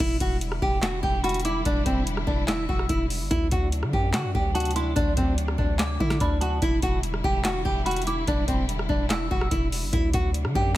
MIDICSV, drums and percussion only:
0, 0, Header, 1, 2, 480
1, 0, Start_track
1, 0, Time_signature, 4, 2, 24, 8
1, 0, Key_signature, 1, "minor"
1, 0, Tempo, 413793
1, 12496, End_track
2, 0, Start_track
2, 0, Title_t, "Drums"
2, 0, Note_on_c, 9, 36, 114
2, 115, Note_off_c, 9, 36, 0
2, 236, Note_on_c, 9, 42, 78
2, 239, Note_on_c, 9, 36, 101
2, 352, Note_off_c, 9, 42, 0
2, 355, Note_off_c, 9, 36, 0
2, 479, Note_on_c, 9, 42, 85
2, 595, Note_off_c, 9, 42, 0
2, 599, Note_on_c, 9, 37, 88
2, 715, Note_off_c, 9, 37, 0
2, 719, Note_on_c, 9, 36, 90
2, 835, Note_off_c, 9, 36, 0
2, 957, Note_on_c, 9, 39, 99
2, 959, Note_on_c, 9, 38, 125
2, 961, Note_on_c, 9, 42, 84
2, 1073, Note_off_c, 9, 39, 0
2, 1075, Note_off_c, 9, 38, 0
2, 1077, Note_off_c, 9, 42, 0
2, 1200, Note_on_c, 9, 36, 93
2, 1316, Note_off_c, 9, 36, 0
2, 1439, Note_on_c, 9, 42, 73
2, 1499, Note_off_c, 9, 42, 0
2, 1499, Note_on_c, 9, 42, 70
2, 1559, Note_off_c, 9, 42, 0
2, 1559, Note_on_c, 9, 42, 69
2, 1619, Note_off_c, 9, 42, 0
2, 1619, Note_on_c, 9, 42, 72
2, 1680, Note_off_c, 9, 42, 0
2, 1680, Note_on_c, 9, 42, 89
2, 1796, Note_off_c, 9, 42, 0
2, 1919, Note_on_c, 9, 36, 117
2, 1919, Note_on_c, 9, 42, 74
2, 2035, Note_off_c, 9, 36, 0
2, 2035, Note_off_c, 9, 42, 0
2, 2156, Note_on_c, 9, 42, 79
2, 2159, Note_on_c, 9, 36, 95
2, 2272, Note_off_c, 9, 42, 0
2, 2275, Note_off_c, 9, 36, 0
2, 2399, Note_on_c, 9, 42, 86
2, 2515, Note_off_c, 9, 42, 0
2, 2520, Note_on_c, 9, 37, 93
2, 2636, Note_off_c, 9, 37, 0
2, 2639, Note_on_c, 9, 36, 89
2, 2755, Note_off_c, 9, 36, 0
2, 2878, Note_on_c, 9, 39, 101
2, 2879, Note_on_c, 9, 38, 127
2, 2882, Note_on_c, 9, 42, 85
2, 2994, Note_off_c, 9, 39, 0
2, 2995, Note_off_c, 9, 38, 0
2, 2998, Note_off_c, 9, 42, 0
2, 3120, Note_on_c, 9, 36, 95
2, 3236, Note_off_c, 9, 36, 0
2, 3240, Note_on_c, 9, 37, 95
2, 3356, Note_off_c, 9, 37, 0
2, 3357, Note_on_c, 9, 42, 85
2, 3358, Note_on_c, 9, 36, 98
2, 3473, Note_off_c, 9, 42, 0
2, 3474, Note_off_c, 9, 36, 0
2, 3600, Note_on_c, 9, 46, 87
2, 3716, Note_off_c, 9, 46, 0
2, 3839, Note_on_c, 9, 36, 110
2, 3839, Note_on_c, 9, 42, 74
2, 3955, Note_off_c, 9, 36, 0
2, 3955, Note_off_c, 9, 42, 0
2, 4076, Note_on_c, 9, 42, 81
2, 4079, Note_on_c, 9, 36, 98
2, 4192, Note_off_c, 9, 42, 0
2, 4195, Note_off_c, 9, 36, 0
2, 4319, Note_on_c, 9, 42, 87
2, 4435, Note_off_c, 9, 42, 0
2, 4440, Note_on_c, 9, 37, 88
2, 4556, Note_off_c, 9, 37, 0
2, 4559, Note_on_c, 9, 36, 87
2, 4675, Note_off_c, 9, 36, 0
2, 4798, Note_on_c, 9, 39, 103
2, 4799, Note_on_c, 9, 38, 127
2, 4802, Note_on_c, 9, 42, 84
2, 4914, Note_off_c, 9, 39, 0
2, 4915, Note_off_c, 9, 38, 0
2, 4918, Note_off_c, 9, 42, 0
2, 5040, Note_on_c, 9, 36, 96
2, 5156, Note_off_c, 9, 36, 0
2, 5279, Note_on_c, 9, 42, 72
2, 5339, Note_off_c, 9, 42, 0
2, 5339, Note_on_c, 9, 42, 71
2, 5399, Note_off_c, 9, 42, 0
2, 5399, Note_on_c, 9, 42, 67
2, 5459, Note_off_c, 9, 42, 0
2, 5459, Note_on_c, 9, 42, 69
2, 5520, Note_off_c, 9, 42, 0
2, 5520, Note_on_c, 9, 42, 88
2, 5636, Note_off_c, 9, 42, 0
2, 5759, Note_on_c, 9, 36, 117
2, 5759, Note_on_c, 9, 42, 76
2, 5875, Note_off_c, 9, 36, 0
2, 5875, Note_off_c, 9, 42, 0
2, 5997, Note_on_c, 9, 42, 80
2, 5999, Note_on_c, 9, 36, 97
2, 6113, Note_off_c, 9, 42, 0
2, 6115, Note_off_c, 9, 36, 0
2, 6240, Note_on_c, 9, 42, 88
2, 6356, Note_off_c, 9, 42, 0
2, 6360, Note_on_c, 9, 37, 92
2, 6476, Note_off_c, 9, 37, 0
2, 6479, Note_on_c, 9, 36, 89
2, 6595, Note_off_c, 9, 36, 0
2, 6718, Note_on_c, 9, 39, 104
2, 6719, Note_on_c, 9, 38, 121
2, 6722, Note_on_c, 9, 42, 88
2, 6834, Note_off_c, 9, 39, 0
2, 6835, Note_off_c, 9, 38, 0
2, 6838, Note_off_c, 9, 42, 0
2, 6960, Note_on_c, 9, 36, 92
2, 7076, Note_off_c, 9, 36, 0
2, 7080, Note_on_c, 9, 37, 102
2, 7080, Note_on_c, 9, 38, 72
2, 7196, Note_off_c, 9, 37, 0
2, 7196, Note_off_c, 9, 38, 0
2, 7196, Note_on_c, 9, 42, 84
2, 7198, Note_on_c, 9, 36, 97
2, 7312, Note_off_c, 9, 42, 0
2, 7314, Note_off_c, 9, 36, 0
2, 7440, Note_on_c, 9, 42, 89
2, 7556, Note_off_c, 9, 42, 0
2, 7679, Note_on_c, 9, 36, 119
2, 7679, Note_on_c, 9, 42, 76
2, 7795, Note_off_c, 9, 36, 0
2, 7795, Note_off_c, 9, 42, 0
2, 7916, Note_on_c, 9, 42, 78
2, 7919, Note_on_c, 9, 36, 96
2, 8032, Note_off_c, 9, 42, 0
2, 8035, Note_off_c, 9, 36, 0
2, 8159, Note_on_c, 9, 42, 84
2, 8275, Note_off_c, 9, 42, 0
2, 8279, Note_on_c, 9, 37, 88
2, 8395, Note_off_c, 9, 37, 0
2, 8399, Note_on_c, 9, 36, 89
2, 8515, Note_off_c, 9, 36, 0
2, 8637, Note_on_c, 9, 39, 104
2, 8639, Note_on_c, 9, 38, 127
2, 8641, Note_on_c, 9, 42, 87
2, 8753, Note_off_c, 9, 39, 0
2, 8755, Note_off_c, 9, 38, 0
2, 8757, Note_off_c, 9, 42, 0
2, 8880, Note_on_c, 9, 36, 93
2, 8996, Note_off_c, 9, 36, 0
2, 9119, Note_on_c, 9, 42, 73
2, 9179, Note_off_c, 9, 42, 0
2, 9179, Note_on_c, 9, 42, 72
2, 9239, Note_off_c, 9, 42, 0
2, 9239, Note_on_c, 9, 42, 72
2, 9299, Note_off_c, 9, 42, 0
2, 9299, Note_on_c, 9, 42, 68
2, 9360, Note_off_c, 9, 42, 0
2, 9360, Note_on_c, 9, 42, 86
2, 9476, Note_off_c, 9, 42, 0
2, 9599, Note_on_c, 9, 36, 116
2, 9599, Note_on_c, 9, 42, 75
2, 9715, Note_off_c, 9, 36, 0
2, 9715, Note_off_c, 9, 42, 0
2, 9836, Note_on_c, 9, 42, 80
2, 9839, Note_on_c, 9, 36, 101
2, 9952, Note_off_c, 9, 42, 0
2, 9955, Note_off_c, 9, 36, 0
2, 10079, Note_on_c, 9, 42, 86
2, 10195, Note_off_c, 9, 42, 0
2, 10199, Note_on_c, 9, 37, 90
2, 10315, Note_off_c, 9, 37, 0
2, 10318, Note_on_c, 9, 36, 91
2, 10434, Note_off_c, 9, 36, 0
2, 10557, Note_on_c, 9, 39, 103
2, 10559, Note_on_c, 9, 38, 125
2, 10562, Note_on_c, 9, 42, 82
2, 10673, Note_off_c, 9, 39, 0
2, 10675, Note_off_c, 9, 38, 0
2, 10678, Note_off_c, 9, 42, 0
2, 10800, Note_on_c, 9, 36, 97
2, 10916, Note_off_c, 9, 36, 0
2, 10919, Note_on_c, 9, 37, 97
2, 11035, Note_off_c, 9, 37, 0
2, 11036, Note_on_c, 9, 42, 86
2, 11038, Note_on_c, 9, 36, 97
2, 11152, Note_off_c, 9, 42, 0
2, 11154, Note_off_c, 9, 36, 0
2, 11280, Note_on_c, 9, 46, 88
2, 11396, Note_off_c, 9, 46, 0
2, 11519, Note_on_c, 9, 36, 115
2, 11519, Note_on_c, 9, 42, 78
2, 11635, Note_off_c, 9, 36, 0
2, 11635, Note_off_c, 9, 42, 0
2, 11756, Note_on_c, 9, 42, 82
2, 11759, Note_on_c, 9, 36, 96
2, 11872, Note_off_c, 9, 42, 0
2, 11875, Note_off_c, 9, 36, 0
2, 11999, Note_on_c, 9, 42, 85
2, 12115, Note_off_c, 9, 42, 0
2, 12119, Note_on_c, 9, 37, 92
2, 12235, Note_off_c, 9, 37, 0
2, 12238, Note_on_c, 9, 36, 86
2, 12354, Note_off_c, 9, 36, 0
2, 12496, End_track
0, 0, End_of_file